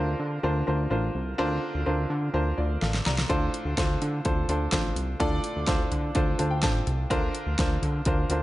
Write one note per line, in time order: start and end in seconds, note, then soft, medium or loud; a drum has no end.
0.00 0.15 D2 loud
0.00 0.15 D3 medium
0.00 0.43 D4 medium
0.00 0.43 F4 medium
0.00 0.44 A#4 medium
0.00 0.44 C5 loud
0.00 2.58 D5 medium
0.20 0.39 D3 medium
0.43 0.63 D2 loud
0.43 0.63 D4 medium
0.43 0.63 F4 medium
0.43 0.63 A#4 medium
0.43 0.63 C5 medium
0.67 0.87 D2 medium
0.67 0.87 D4 medium
0.67 0.87 F4 medium
0.67 0.87 A#4 medium
0.67 0.87 C5 medium
0.90 1.11 A1 medium
0.90 1.30 D4 medium
0.90 1.30 F4 medium
0.90 1.30 A#4 medium
0.90 1.30 C5 medium
1.15 1.34 C2 medium
1.38 1.59 D2 loud
1.38 2.06 D3 medium
1.38 1.78 D4 loud
1.38 1.78 F4 medium
1.38 1.78 A#4 medium
1.38 1.78 C5 loud
1.75 1.84 D2 medium
1.86 2.06 D2 medium
1.86 2.25 D4 medium
1.86 2.25 F4 medium
1.86 2.25 A#4 medium
1.86 2.25 C5 medium
2.10 2.30 D3 medium
2.34 2.53 D2 medium
2.34 2.53 D4 medium
2.34 2.53 F4 medium
2.34 2.53 A#4 medium
2.34 2.54 C5 medium
2.58 2.78 D2 medium
2.58 2.81 F4 soft
2.58 2.80 D5 medium
2.82 3.02 A1 medium
2.82 3.04 A4 soft
2.82 3.04 F5 medium
2.82 snare soft
2.94 snare medium
3.06 3.25 C2 medium
3.06 3.52 D5 soft
3.06 3.51 A#5 medium
3.06 snare medium
3.18 snare medium
3.29 3.49 D2 loud
3.29 3.97 A2 medium
3.29 3.68 D4 medium
3.29 3.69 F4 medium
3.29 3.69 A4 medium
3.29 3.69 C5 loud
3.29 kick medium
3.29 closed hi-hat medium
3.54 closed hi-hat medium
3.65 3.75 D2 medium
3.77 3.97 D2 loud
3.77 4.16 D4 medium
3.77 4.17 F4 medium
3.77 4.16 A4 medium
3.77 4.16 C5 medium
3.77 kick medium
3.77 snare medium
3.77 closed hi-hat medium
4.02 4.21 D3 medium
4.02 closed hi-hat medium
4.25 4.45 D2 medium
4.25 4.44 D4 medium
4.25 4.45 F4 medium
4.25 4.45 A4 medium
4.25 4.45 C5 medium
4.25 kick medium
4.25 closed hi-hat medium
4.48 4.68 D2 medium
4.48 4.68 D4 medium
4.48 4.68 F4 medium
4.48 4.68 A4 medium
4.48 4.68 C5 medium
4.48 closed hi-hat medium
4.72 4.92 A1 medium
4.72 5.12 D4 medium
4.72 5.12 F4 medium
4.72 5.12 A4 medium
4.72 5.12 C5 medium
4.72 kick medium
4.72 snare medium
4.72 closed hi-hat medium
4.96 5.15 C2 medium
4.96 closed hi-hat medium
5.20 5.40 D2 loud
5.20 5.87 A2 medium
5.20 5.59 D4 medium
5.20 5.59 F4 medium
5.20 5.59 A4 medium
5.20 5.59 D5 loud
5.20 kick medium
5.20 closed hi-hat medium
5.44 closed hi-hat medium
5.56 5.66 D2 medium
5.67 5.87 D2 loud
5.67 6.06 D4 medium
5.67 6.06 F4 medium
5.67 6.06 A4 medium
5.67 6.07 C5 medium
5.67 kick medium
5.67 snare medium
5.67 closed hi-hat medium
5.92 6.11 D3 medium
5.92 closed hi-hat medium
5.92 floor tom medium
6.15 6.35 D2 medium
6.15 6.35 D4 medium
6.15 6.35 F4 medium
6.15 6.35 A4 medium
6.15 6.35 C5 medium
6.15 kick medium
6.15 closed hi-hat medium
6.39 6.64 D2 medium
6.39 6.58 D4 medium
6.39 6.58 F4 medium
6.39 6.58 A4 medium
6.39 6.59 C5 medium
6.39 6.50 F5 medium
6.39 closed hi-hat medium
6.51 6.62 G5 medium
6.62 6.82 A1 medium
6.62 7.02 D4 medium
6.62 7.02 F4 medium
6.62 7.02 A4 medium
6.62 7.02 C5 medium
6.62 7.07 A5 medium
6.62 kick medium
6.62 snare medium
6.62 closed hi-hat medium
6.87 7.06 C2 medium
6.87 closed hi-hat medium
6.87 floor tom medium
7.10 7.30 D2 loud
7.10 7.78 D3 medium
7.10 7.49 D4 loud
7.10 7.50 F4 medium
7.10 7.50 A#4 medium
7.10 7.50 C5 loud
7.10 kick medium
7.10 closed hi-hat medium
7.35 closed hi-hat medium
7.47 7.56 D2 medium
7.59 7.78 D2 medium
7.59 7.98 D4 medium
7.59 7.98 F4 medium
7.59 7.98 A#4 medium
7.59 7.98 C5 medium
7.59 kick medium
7.59 snare medium
7.59 closed hi-hat medium
7.82 8.02 D3 medium
7.82 closed hi-hat medium
7.82 floor tom medium
8.05 8.25 D2 medium
8.05 8.26 D4 medium
8.05 8.26 F4 medium
8.05 8.26 A#4 medium
8.05 8.26 C5 medium
8.05 kick medium
8.05 closed hi-hat medium
8.30 8.43 D2 medium
8.30 8.43 D4 medium
8.30 8.43 F4 medium
8.30 8.43 A#4 medium
8.30 8.43 C5 medium
8.30 closed hi-hat medium